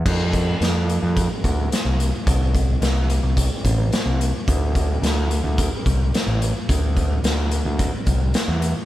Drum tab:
CC |x-------|--------|--------|--------|
HH |-xxxxxxx|xxxxxxxx|xxxxxxxx|xxxxxxxx|
SD |--o---o-|--o---o-|--o---o-|--o---o-|
BD |oo--oo--|oo--oo--|oo--oo--|oo--oo--|